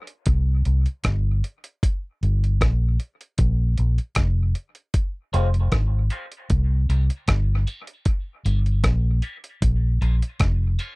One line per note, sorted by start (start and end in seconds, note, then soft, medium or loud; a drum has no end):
0.07 closed hi-hat medium
0.26 0.63 C2 medium
0.26 kick loud
0.26 closed hi-hat loud
0.65 0.85 C2 medium
0.65 closed hi-hat medium
0.86 closed hi-hat medium
1.04 1.41 G1 medium
1.04 kick loud
1.04 cross-stick loud
1.04 closed hi-hat medium
1.44 closed hi-hat medium
1.64 closed hi-hat medium
1.83 kick loud
1.83 closed hi-hat medium
2.23 2.58 G1 medium
2.23 closed hi-hat medium
2.44 closed hi-hat soft
2.61 2.97 A#1 medium
2.61 kick loud
2.61 cross-stick loud
2.61 closed hi-hat medium
3.00 closed hi-hat medium
3.21 closed hi-hat medium
3.38 3.75 A#1 medium
3.38 kick loud
3.38 closed hi-hat loud
3.78 3.97 A#1 medium
3.78 closed hi-hat medium
3.98 closed hi-hat soft
4.15 4.52 F1 medium
4.15 kick loud
4.15 cross-stick loud
4.15 closed hi-hat medium
4.55 closed hi-hat medium
4.75 closed hi-hat soft
4.94 kick loud
4.94 closed hi-hat medium
5.33 5.69 F1 medium
5.33 5.47 F3 medium
5.33 5.47 G#3 medium
5.33 5.47 C4 medium
5.33 5.48 F4 medium
5.33 closed hi-hat medium
5.54 closed hi-hat soft
5.72 6.08 G#1 medium
5.72 kick loud
5.72 cross-stick loud
5.72 closed hi-hat medium
6.10 6.24 F3 medium
6.10 6.25 G#3 medium
6.10 6.25 C4 medium
6.10 6.25 F4 medium
6.10 closed hi-hat medium
6.32 closed hi-hat medium
6.50 6.86 C2 medium
6.50 kick loud
6.50 closed hi-hat loud
6.89 7.08 C2 medium
6.89 7.03 G3 medium
6.89 7.03 C4 medium
6.89 7.03 D#4 medium
6.89 7.04 G4 medium
6.89 closed hi-hat medium
7.10 closed hi-hat soft
7.28 7.64 G1 medium
7.28 kick loud
7.28 cross-stick loud
7.28 closed hi-hat medium
7.67 7.81 G3 medium
7.67 7.81 C4 medium
7.67 7.81 D#4 medium
7.67 7.81 G4 medium
7.67 closed hi-hat medium
7.87 closed hi-hat medium
8.05 kick medium
8.05 closed hi-hat medium
8.45 8.81 G1 medium
8.45 8.58 G3 medium
8.45 8.59 A#3 medium
8.45 8.59 C#4 medium
8.45 8.59 G4 medium
8.45 closed hi-hat medium
8.66 closed hi-hat soft
8.84 9.20 A#1 medium
8.84 kick loud
8.84 cross-stick loud
8.84 closed hi-hat medium
9.22 9.36 G3 medium
9.22 9.36 A#3 medium
9.22 9.36 C#4 medium
9.22 9.37 G4 medium
9.22 closed hi-hat medium
9.44 closed hi-hat medium
9.62 9.98 A#1 medium
9.62 kick loud
9.62 closed hi-hat loud
10.01 10.20 A#1 medium
10.01 10.14 F3 medium
10.01 10.15 A#3 medium
10.01 10.15 C#4 medium
10.01 10.15 F4 medium
10.01 closed hi-hat medium
10.22 closed hi-hat medium
10.39 10.76 F1 medium
10.39 kick loud
10.39 cross-stick medium
10.39 closed hi-hat medium
10.79 10.92 F3 medium
10.79 10.93 A#3 medium
10.79 10.93 C#4 medium
10.79 10.93 F4 medium
10.79 closed hi-hat medium